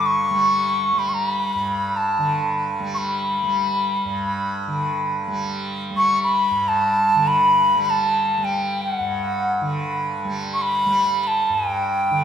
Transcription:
0, 0, Header, 1, 3, 480
1, 0, Start_track
1, 0, Tempo, 500000
1, 11751, End_track
2, 0, Start_track
2, 0, Title_t, "Bansuri"
2, 0, Program_c, 0, 73
2, 19, Note_on_c, 0, 86, 82
2, 57, Note_on_c, 0, 85, 89
2, 66, Note_off_c, 0, 86, 0
2, 948, Note_on_c, 0, 83, 78
2, 963, Note_off_c, 0, 85, 0
2, 1044, Note_on_c, 0, 85, 65
2, 1059, Note_off_c, 0, 83, 0
2, 1094, Note_on_c, 0, 82, 88
2, 1108, Note_off_c, 0, 85, 0
2, 1209, Note_off_c, 0, 82, 0
2, 1209, Note_on_c, 0, 83, 88
2, 1887, Note_on_c, 0, 81, 80
2, 1902, Note_off_c, 0, 83, 0
2, 2568, Note_off_c, 0, 81, 0
2, 2826, Note_on_c, 0, 85, 64
2, 2861, Note_on_c, 0, 83, 70
2, 2870, Note_off_c, 0, 85, 0
2, 4816, Note_off_c, 0, 83, 0
2, 5730, Note_on_c, 0, 85, 90
2, 5969, Note_off_c, 0, 85, 0
2, 5985, Note_on_c, 0, 83, 93
2, 6416, Note_on_c, 0, 81, 88
2, 6430, Note_off_c, 0, 83, 0
2, 6985, Note_on_c, 0, 83, 98
2, 6999, Note_off_c, 0, 81, 0
2, 7539, Note_off_c, 0, 83, 0
2, 7539, Note_on_c, 0, 83, 85
2, 7584, Note_on_c, 0, 81, 92
2, 7594, Note_off_c, 0, 83, 0
2, 8104, Note_on_c, 0, 79, 80
2, 8118, Note_off_c, 0, 81, 0
2, 8467, Note_off_c, 0, 79, 0
2, 8467, Note_on_c, 0, 79, 79
2, 8582, Note_off_c, 0, 79, 0
2, 8582, Note_on_c, 0, 78, 79
2, 9528, Note_off_c, 0, 78, 0
2, 10115, Note_on_c, 0, 85, 71
2, 10194, Note_on_c, 0, 83, 105
2, 10209, Note_off_c, 0, 85, 0
2, 10785, Note_off_c, 0, 83, 0
2, 10785, Note_on_c, 0, 83, 81
2, 10823, Note_on_c, 0, 81, 88
2, 10832, Note_off_c, 0, 83, 0
2, 11084, Note_on_c, 0, 79, 88
2, 11098, Note_off_c, 0, 81, 0
2, 11751, Note_off_c, 0, 79, 0
2, 11751, End_track
3, 0, Start_track
3, 0, Title_t, "Tanpura"
3, 0, Program_c, 1, 104
3, 0, Note_on_c, 1, 43, 54
3, 0, Note_on_c, 1, 50, 61
3, 0, Note_on_c, 1, 55, 57
3, 292, Note_off_c, 1, 55, 0
3, 292, Note_on_c, 1, 55, 54
3, 889, Note_off_c, 1, 55, 0
3, 889, Note_on_c, 1, 55, 53
3, 1484, Note_off_c, 1, 43, 0
3, 1488, Note_on_c, 1, 43, 55
3, 2087, Note_off_c, 1, 50, 0
3, 2091, Note_on_c, 1, 50, 54
3, 2686, Note_off_c, 1, 55, 0
3, 2686, Note_on_c, 1, 55, 55
3, 3291, Note_off_c, 1, 55, 0
3, 3291, Note_on_c, 1, 55, 56
3, 3883, Note_off_c, 1, 43, 0
3, 3887, Note_on_c, 1, 43, 56
3, 4479, Note_off_c, 1, 50, 0
3, 4483, Note_on_c, 1, 50, 57
3, 5064, Note_off_c, 1, 55, 0
3, 5064, Note_on_c, 1, 55, 60
3, 5669, Note_off_c, 1, 55, 0
3, 5669, Note_on_c, 1, 55, 54
3, 6244, Note_off_c, 1, 43, 0
3, 6247, Note_on_c, 1, 43, 62
3, 6857, Note_off_c, 1, 50, 0
3, 6861, Note_on_c, 1, 50, 56
3, 7433, Note_off_c, 1, 55, 0
3, 7433, Note_on_c, 1, 55, 60
3, 8042, Note_off_c, 1, 55, 0
3, 8042, Note_on_c, 1, 55, 59
3, 8634, Note_off_c, 1, 43, 0
3, 8638, Note_on_c, 1, 43, 57
3, 9221, Note_off_c, 1, 50, 0
3, 9225, Note_on_c, 1, 50, 60
3, 9837, Note_off_c, 1, 55, 0
3, 9837, Note_on_c, 1, 55, 58
3, 10426, Note_off_c, 1, 55, 0
3, 10426, Note_on_c, 1, 55, 56
3, 11030, Note_off_c, 1, 43, 0
3, 11034, Note_on_c, 1, 43, 60
3, 11619, Note_off_c, 1, 50, 0
3, 11623, Note_on_c, 1, 50, 59
3, 11751, Note_off_c, 1, 43, 0
3, 11751, Note_off_c, 1, 50, 0
3, 11751, Note_off_c, 1, 55, 0
3, 11751, End_track
0, 0, End_of_file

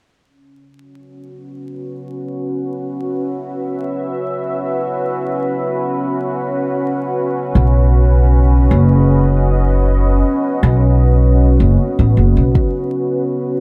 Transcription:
0, 0, Header, 1, 4, 480
1, 0, Start_track
1, 0, Tempo, 500000
1, 13058, End_track
2, 0, Start_track
2, 0, Title_t, "Ambient pad"
2, 0, Program_c, 0, 92
2, 230, Note_on_c, 0, 61, 61
2, 688, Note_on_c, 0, 66, 77
2, 946, Note_on_c, 0, 71, 76
2, 2595, Note_on_c, 0, 76, 77
2, 6139, Note_off_c, 0, 76, 0
2, 7711, Note_on_c, 0, 75, 72
2, 12052, Note_off_c, 0, 75, 0
2, 13058, Note_off_c, 0, 61, 0
2, 13058, Note_off_c, 0, 66, 0
2, 13058, Note_off_c, 0, 71, 0
2, 13058, End_track
3, 0, Start_track
3, 0, Title_t, "Upright bass"
3, 0, Program_c, 1, 32
3, 7250, Note_on_c, 1, 35, 89
3, 8325, Note_off_c, 1, 35, 0
3, 8361, Note_on_c, 1, 30, 87
3, 9804, Note_off_c, 1, 30, 0
3, 10204, Note_on_c, 1, 35, 93
3, 11100, Note_off_c, 1, 35, 0
3, 11136, Note_on_c, 1, 30, 88
3, 11292, Note_off_c, 1, 30, 0
3, 11509, Note_on_c, 1, 33, 84
3, 11663, Note_off_c, 1, 33, 0
3, 11683, Note_on_c, 1, 30, 82
3, 11853, Note_off_c, 1, 30, 0
3, 11873, Note_on_c, 1, 35, 79
3, 12030, Note_off_c, 1, 35, 0
3, 13058, End_track
4, 0, Start_track
4, 0, Title_t, "Drums"
4, 12050, Note_on_c, 9, 36, 97
4, 12146, Note_off_c, 9, 36, 0
4, 13058, End_track
0, 0, End_of_file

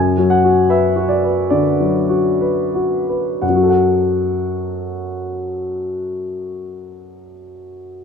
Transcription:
0, 0, Header, 1, 2, 480
1, 0, Start_track
1, 0, Key_signature, 3, "minor"
1, 0, Tempo, 797872
1, 909, Tempo, 907716
1, 1389, Tempo, 1000000
1, 1869, Time_signature, 4, 2, 24, 8
1, 1869, Tempo, 952381
1, 4200, End_track
2, 0, Start_track
2, 0, Title_t, "Grand piano"
2, 0, Program_c, 0, 0
2, 0, Note_on_c, 0, 42, 37
2, 0, Note_on_c, 0, 80, 44
2, 84, Control_c, 0, 64, 127
2, 107, Note_on_c, 0, 54, 29
2, 167, Note_off_c, 0, 80, 0
2, 181, Note_on_c, 0, 78, 44
2, 265, Note_on_c, 0, 66, 27
2, 357, Note_off_c, 0, 54, 0
2, 401, Note_off_c, 0, 78, 0
2, 414, Note_on_c, 0, 71, 30
2, 421, Note_on_c, 0, 76, 40
2, 516, Note_off_c, 0, 66, 0
2, 577, Note_on_c, 0, 66, 28
2, 644, Note_off_c, 0, 76, 0
2, 653, Note_on_c, 0, 74, 36
2, 674, Note_off_c, 0, 71, 0
2, 742, Note_on_c, 0, 71, 25
2, 841, Note_off_c, 0, 66, 0
2, 887, Note_off_c, 0, 42, 0
2, 888, Note_off_c, 0, 74, 0
2, 903, Note_on_c, 0, 74, 36
2, 908, Note_on_c, 0, 50, 25
2, 1000, Note_off_c, 0, 71, 0
2, 1064, Note_on_c, 0, 54, 25
2, 1157, Note_off_c, 0, 50, 0
2, 1215, Note_on_c, 0, 66, 24
2, 1322, Note_off_c, 0, 54, 0
2, 1365, Note_off_c, 0, 74, 0
2, 1383, Note_on_c, 0, 71, 24
2, 1480, Note_off_c, 0, 66, 0
2, 1547, Note_on_c, 0, 66, 25
2, 1645, Note_off_c, 0, 71, 0
2, 1710, Note_on_c, 0, 71, 22
2, 1808, Note_off_c, 0, 66, 0
2, 1868, Note_off_c, 0, 71, 0
2, 1868, Note_on_c, 0, 78, 29
2, 1869, Note_on_c, 0, 42, 21
2, 1882, Control_c, 0, 64, 0
2, 1904, Note_on_c, 0, 54, 22
2, 1939, Note_on_c, 0, 66, 23
2, 1973, Note_on_c, 0, 69, 20
2, 2000, Note_off_c, 0, 78, 0
2, 2007, Control_c, 0, 64, 127
2, 2008, Note_on_c, 0, 78, 23
2, 3737, Note_off_c, 0, 42, 0
2, 3772, Note_off_c, 0, 54, 0
2, 3807, Note_off_c, 0, 66, 0
2, 3841, Note_off_c, 0, 69, 0
2, 3876, Note_off_c, 0, 78, 0
2, 4200, End_track
0, 0, End_of_file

